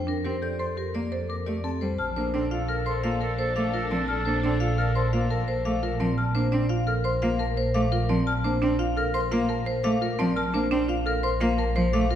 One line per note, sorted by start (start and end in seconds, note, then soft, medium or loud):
0.00 1.88 F2 medium
0.00 0.13 G5 medium
0.07 0.30 D4 medium
0.07 0.30 A#4 medium
0.24 0.38 C4 medium
0.24 0.47 G4 medium
0.24 0.47 C5 medium
0.42 0.65 A4 medium
0.42 0.65 D5 medium
0.42 0.49 G6 medium
0.59 0.82 A4 medium
0.59 0.82 C5 medium
0.59 0.66 C6 medium
0.77 1.00 G4 medium
0.77 1.00 A#4 medium
0.94 1.08 A#3 medium
0.94 1.17 D5 medium
1.12 1.35 A4 medium
1.12 1.35 C5 medium
1.29 1.52 A#4 medium
1.29 1.36 D6 medium
1.46 1.60 A3 medium
1.46 1.69 G4 medium
1.46 1.69 D5 medium
1.64 1.87 C4 medium
1.64 1.87 A4 medium
1.64 1.71 A5 medium
1.81 1.95 G3 medium
1.81 2.04 C5 medium
1.98 12.15 A#1 medium
1.98 5.96 D4 medium
1.98 5.96 A4 medium
1.98 2.11 A4 soft
1.98 2.21 A5 medium
1.98 2.05 F6 medium
2.16 2.30 A#3 medium
2.16 2.33 D4 medium
2.16 2.29 A4 soft
2.16 2.39 C5 medium
2.34 2.47 C4 medium
2.34 2.57 D4 medium
2.34 2.46 A4 soft
2.34 2.57 D5 medium
2.51 2.74 F4 medium
2.51 2.64 A4 medium
2.51 2.74 F5 medium
2.69 2.91 A4 medium
2.69 2.81 A4 medium
2.69 2.91 A#4 medium
2.69 2.75 F6 medium
2.86 2.99 A4 medium
2.86 3.09 C5 medium
2.86 2.93 C6 medium
3.04 3.17 A#3 medium
3.04 3.26 F4 medium
3.04 3.16 A4 medium
3.04 3.26 F5 medium
3.21 3.33 A4 medium
3.21 3.44 A#4 medium
3.21 3.28 A5 medium
3.39 3.51 A4 medium
3.39 3.61 C5 medium
3.56 3.69 A3 medium
3.56 3.68 A4 medium
3.56 3.79 A4 medium
3.56 3.79 F5 medium
3.56 3.63 D6 medium
3.73 3.96 F4 medium
3.73 3.86 A4 medium
3.73 3.96 A#4 medium
3.91 4.04 F3 medium
3.91 4.14 C4 medium
3.91 4.03 A4 medium
3.91 4.14 D5 medium
3.91 3.97 A5 medium
4.08 4.21 A4 medium
4.08 4.31 A5 medium
4.08 4.15 F6 medium
4.25 4.39 A#3 medium
4.25 4.42 D4 medium
4.25 4.38 A4 medium
4.25 4.48 C5 medium
4.43 4.57 C4 medium
4.43 4.66 D4 medium
4.43 4.55 A4 medium
4.43 4.66 D5 medium
4.60 4.83 F4 medium
4.60 4.73 A4 medium
4.60 4.83 F5 medium
4.78 4.90 A4 medium
4.78 5.01 A4 medium
4.78 5.01 A#4 medium
4.78 4.85 F6 medium
4.95 5.08 A4 medium
4.95 5.18 C5 medium
4.95 5.02 C6 medium
5.13 5.26 A#3 medium
5.13 5.36 F4 medium
5.13 5.25 A4 medium
5.13 5.36 F5 medium
5.30 5.42 A4 medium
5.30 5.53 A#4 medium
5.30 5.37 A5 medium
5.48 5.60 A4 soft
5.48 5.71 C5 medium
5.65 5.79 A3 medium
5.65 5.77 A4 soft
5.65 5.88 A4 medium
5.65 5.88 F5 medium
5.65 5.72 D6 medium
5.82 6.05 F4 medium
5.82 5.95 A4 soft
5.82 6.06 A#4 medium
6.00 6.13 F3 medium
6.00 6.23 C4 medium
6.00 6.23 D5 medium
6.00 6.07 A5 medium
6.18 6.40 A5 medium
6.18 6.24 F6 medium
6.35 6.48 A#3 medium
6.35 6.51 D4 medium
6.35 6.58 C5 medium
6.52 6.66 C4 medium
6.52 6.75 D4 medium
6.52 6.75 D5 medium
6.69 6.93 F4 medium
6.69 6.92 F5 medium
6.87 7.10 A4 medium
6.87 7.10 A#4 medium
6.87 6.94 F6 medium
7.04 7.27 C5 medium
7.04 7.28 C5 medium
7.04 7.11 C6 medium
7.22 7.35 A#3 medium
7.22 7.45 F4 medium
7.22 7.45 F5 medium
7.39 7.62 A#4 medium
7.39 7.46 A5 medium
7.57 7.80 C5 medium
7.74 7.88 A3 medium
7.74 7.97 A4 medium
7.74 7.97 F5 medium
7.74 7.81 D6 medium
7.92 8.15 F4 medium
7.92 8.15 A#4 medium
8.09 8.22 F3 medium
8.09 8.32 C4 medium
8.09 8.32 D5 medium
8.09 8.16 A5 medium
8.27 8.50 A5 medium
8.27 8.34 F6 medium
8.44 8.57 A#3 medium
8.44 8.61 D4 medium
8.44 8.67 C5 medium
8.62 8.75 C4 medium
8.62 8.84 D4 loud
8.62 8.85 D5 medium
8.79 9.02 F4 medium
8.79 9.02 F5 loud
8.97 9.19 A4 medium
8.97 9.20 A#4 medium
8.97 9.03 F6 medium
9.14 9.37 C5 medium
9.14 9.21 C6 loud
9.31 9.45 A#3 loud
9.31 9.54 F4 medium
9.31 9.54 F5 loud
9.49 9.72 A#4 medium
9.49 9.56 A5 medium
9.66 9.89 C5 medium
9.84 9.97 A3 loud
9.84 10.07 A4 medium
9.84 10.07 F5 loud
9.84 9.90 D6 medium
10.01 10.24 F4 medium
10.01 10.24 A#4 medium
10.19 10.32 F3 medium
10.19 10.41 C4 loud
10.19 10.42 D5 medium
10.19 10.25 A5 medium
10.36 10.59 A#4 medium
10.36 10.59 A5 medium
10.36 10.43 F6 medium
10.54 10.67 A#3 medium
10.54 10.70 D4 medium
10.54 10.77 C5 medium
10.71 10.84 C4 medium
10.71 10.94 D4 loud
10.71 10.94 D5 medium
10.88 11.11 F4 medium
10.88 11.11 F5 loud
11.06 11.29 A4 medium
11.06 11.29 A#4 medium
11.06 11.12 F6 medium
11.23 11.46 C5 medium
11.23 11.30 C6 loud
11.41 11.54 A#3 loud
11.41 11.64 F4 medium
11.41 11.64 F5 loud
11.58 11.81 A#4 medium
11.58 11.65 A5 medium
11.76 11.89 F3 medium
11.76 11.98 C5 medium
11.76 11.99 C5 medium
11.93 12.06 A3 loud
11.93 12.15 A4 medium
11.93 12.15 F5 loud
11.93 12.00 D6 medium
12.11 12.15 F4 medium
12.11 12.15 A#4 medium